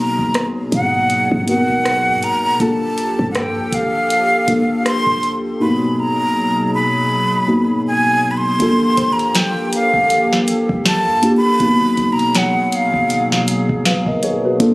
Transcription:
Already playing: G#1 B2 F#3 A#3 B3 D#4 F#4 G#4
0.00 A#5
0.19 G#1, kick
0.34 cross-stick, closed hi-hat
0.72 G#2 F#5, kick, closed hi-hat
1.10 closed hi-hat
1.32 G#2, kick
1.47 A#3 D#4 F#4 A#4 F#5, closed hi-hat
1.53 B3
1.69 G#1, kick
1.85 cross-stick, closed hi-hat
2.07 G#2
2.23 A#5, closed hi-hat
2.34 G#1
2.59 G1 F3 A#3 D4 F4 G4 A4 A5, kick, closed hi-hat
2.98 A#1, closed hi-hat
3.19 G2, kick
3.31 F#5, closed hi-hat
3.35 G5, cross-stick
3.57 A1
3.72 G1 F5, kick, closed hi-hat
4.10 closed hi-hat
4.47 G1 A#3 D4 F4 A4, kick, closed hi-hat
4.86 C6, cross-stick, closed hi-hat
5.07 F1, kick
5.23 closed hi-hat
5.60 G#2 B2 F#3 A#3 D#4 F#4 G#4 B5
5.67 B3
6.00 A#5
6.74 B5
7.47 G#2 A#3 B3 D#4 F#4
7.87 G#5
8.31 B5
8.37 C6
8.60 G1 F3 A#3 D4 F4 G4 A4, kick, closed hi-hat
8.97 G1 C5, kick, closed hi-hat
9.12 A#5
9.19 closed hi-hat
9.35 G5, snare, closed hi-hat
9.73 F5, closed hi-hat
9.94 G1, kick
10.10 closed hi-hat
10.33 snare
10.48 closed hi-hat
10.69 A#1, kick
10.86 A5, snare, closed hi-hat
11.07 G2
11.22 A#3 D4 F4 G4, closed hi-hat
11.37 B5
11.59 G#1 B2 F#3 A#3 B3 D#4 F#4 G#4, kick, closed hi-hat
11.97 G#1, kick, closed hi-hat
12.12 A#5
12.19 closed hi-hat
12.35 C#5 F#5, snare, closed hi-hat
12.72 F5, closed hi-hat
12.94 G#1, kick
13.10 closed hi-hat
13.32 snare
13.48 closed hi-hat
13.69 G#1, kick
13.85 B4 F5, snare, closed hi-hat
14.06 G#1 A#4 D#5, kick
14.23 G#4 C#5, closed hi-hat
14.45 F#4 B4
14.59 G1 F3 A#3 D4 F4 G4 A4, kick, closed hi-hat

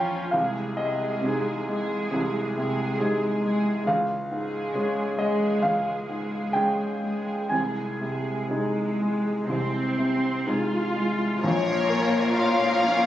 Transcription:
Already playing: A#1 F2 A#2 F3 C#4 F4 C#5 G5 A#5
0.31 C2 C3 G#3 G#4 F5
0.77 C3 G#3 G#4 D#5
1.22 C3 G#3 D#4 G#4
1.68 G#3 G#4
2.12 C2 C3
2.58 C3 G#3 G#4
2.99 C3 G#3 D#4 G#4
3.44 G#3 G#4
3.87 C#2 C#3 F5
4.31 G#2 G#3 G#4
4.74 C#3 G#3 C#4 G#4
5.17 G#3 G#4 D#5
5.62 C#2 C#3 F5
6.07 G#2 G#3 G#4
6.53 C#3 G#3 C#4 G#4 G5
7.01 G#3 G#4
7.49 C2 C3 G#3 G#4 G#5
8.01 C3 G#3 G#4
8.49 C3 G#3 D#4 G#4
9.01 G#3
9.48 C2 C3 C4
9.99 C3
10.45 C3 G#3 D#4 F4 G#4
10.95 G#3
11.42 A#1 A#2 F3 F4 A#4 C#5
11.89 A#3
12.36 F4 F5
12.88 C#4

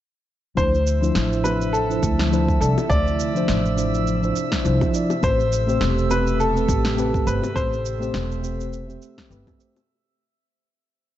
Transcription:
0.55 D2 C3 F3 D4 E4 C5 E5 E6, kick, shaker
0.74 shaker
0.87 shaker
1.01 F3 D4 E4 C5, shaker
1.15 A1, snare, shaker
1.32 shaker
1.43 F3 D4 E4 B4 C5, high bongo, shaker
1.61 shaker
1.73 A4, shaker
1.89 F3 D4 E4 C5, shaker
2.02 D2, kick, high bongo, shaker
2.19 snare, shaker
2.31 F3 D4 E4 C5, shaker
2.48 kick, shaker
2.60 C2 F3 D4 E4 A4 D5, shaker
2.78 high bongo, shaker
2.88 D2 F3 D4 E4 C5 D5, kick, shaker
3.07 shaker
3.20 shaker
3.34 F3 D4 E4 C5, shaker
3.48 A1, snare, shaker
3.66 shaker
3.76 F3 D4 E4 C5, shaker
3.94 shaker
4.07 shaker
4.22 F3 D4 E4 C5, shaker
4.36 shaker
4.52 kick, snare, shaker
4.63 C2 F3 D4 E4 C5, shaker
4.81 kick, high bongo, shaker
4.92 F3 D4 E4 D5, shaker
5.10 high bongo, shaker
5.21 A1 C3 A3 C4 G4 A4 B4 C5, kick, shaker
5.40 shaker
5.53 shaker
5.67 A3 C4 G4 C5, shaker
5.81 E1, snare, shaker
5.98 shaker
6.09 A3 C4 G4 B4, high bongo, shaker
6.27 shaker
6.40 A4, shaker
6.54 A3 C4 G4 B4, shaker
6.68 A1, kick, high bongo, shaker
6.85 snare, shaker
6.96 A3 C4 G4 B4, shaker
7.14 kick, shaker
7.25 G1 A3 C4 G4 B4 C5, shaker
7.43 high bongo, shaker
7.54 A1 A3 C4 G4 B4 C5, kick, shaker
7.73 shaker
7.86 shaker
8.00 A3 C4 G4 C5, shaker
8.14 E1, snare, shaker
8.32 shaker
8.42 A3 C4 G4 C5, shaker
8.61 shaker
8.73 shaker
8.87 A3 C4 G4 C5, shaker
9.02 shaker
9.18 kick, snare, shaker
9.29 G1 A3 C4 G4 B4, shaker
9.47 kick, high bongo, shaker
9.58 A3 C4 G4 C5, shaker
9.76 high bongo, shaker

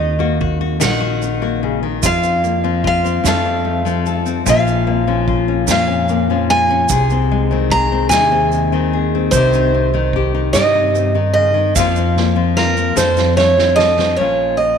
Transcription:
Already playing: D#2 D#3 A#3 F#4 D#5
0.00 D#4, ride
0.19 A#3 F#4
0.41 F#4, kick, ride
0.61 F#4
0.80 A#1 D#3 F#4 F#5, snare, ride, shaker
1.00 F#4
1.22 D#4, ride, shaker
1.42 A#3 F#4
1.63 C#3, ride
1.83 D#3
2.03 F2 F4 F5, kick, ride, shaker
2.23 C4, shaker
2.44 A#3, ride, shaker
2.64 F3 C4
2.84 F4 F5, kick, ride
3.04 C4, shaker
3.24 F2 F3 A3 C4 A4 F5, snare, ride, shaker
3.45 C4
3.65 A3, ride
3.85 F3 C4, shaker
4.06 A4, ride, shaker
4.26 C4, shaker
4.46 A#1 A#2 F3 A#3 C#4 F4 F5, kick, ride, shaker
4.67 C#4, shaker
4.87 A#3, ride
5.07 F3 C#4
5.28 F4, kick, ride
5.48 C#4
5.67 F2 A#2 F4 F5, snare, ride, shaker
5.87 C#4
6.08 A#3, ride, shaker
6.30 F3 C#4
6.50 F4 G#5, ride
6.71 C#4
6.89 C2 C3 G#4, kick, ride, shaker
7.10 C4, shaker
7.30 G#3, ride
7.51 D#3 C4
7.70 G#4 A#5, kick, ride
7.92 C4
8.09 D#2 C3 G#4 G#5, snare, ride, shaker
8.32 C4
8.51 G#3, ride, shaker
8.72 D#3 C4
8.92 G#4, ride
9.15 C4
9.31 C2 C3 D#3 C4 C5, kick, ride, shaker
9.36 D#4 G4
9.53 D#4, shaker
9.72 C4, ride
9.94 D#3 D#4
10.13 G4, kick, ride
10.35 D#4
10.53 G2 C3 G4 D#5, snare, ride, shaker
10.75 D#4
10.94 C4, ride, shaker
11.15 D#3 D#4
11.34 C#3 D#5, ride
11.54 D#3
11.75 F2 F3 A#3 C4 F4 F5, kick, snare, shaker
11.96 C4, shaker
12.16 A#3, snare
12.36 F3 C4
12.57 F4 A#4, snare
12.77 C4, shaker
12.96 F2 A4 C5, snare, shaker
13.17 C4, snare, shaker
13.37 A3 C#5, snare, shaker
13.57 F3 C4, snare
13.76 A4 D#5, snare
13.98 C4, snare
14.16 A#1 A#2 F3 A#3 C#5
14.21 C#4 F4
14.57 F3 D#5

